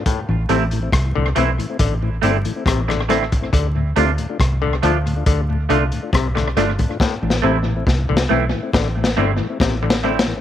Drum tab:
HH |x-----x--x--x-----x--x--x-----x--x--x-----x--x--|x-----x--x--x-----x--x--x-----x--x--x-----x--x--|------------------------------------------------|
SD |------------r-----------------------r--r--r-----|------------r-----------------------r--r--r-----|o---o-------o---o-------o---o-------o---o---o---|
BD |o-----------o-----------o-----------o--------o--|o-----------o-----------o-----------o--------o--|o-----------o-----------o-----------o-----------|